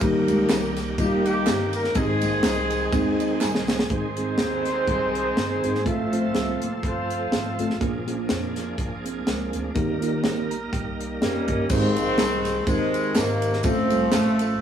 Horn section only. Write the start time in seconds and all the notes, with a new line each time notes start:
0.02 D#4 G4 A#4
1.00 A#3 D#4 G4
1.26 A#3 D#4 G4
1.75 A#4
1.96 C4 D#4 G#4
3.91 D#4 G#4 C5
5.86 C4 F4 A4
6.85 F4 A4 C5
11.22 G3 A#3 C#4
11.70 D#3 G#3 C4
12.67 C3 D#3 G#3
13.16 D#3 A#3
13.64 F3 A3 C4
14.13 A3
14.40 A3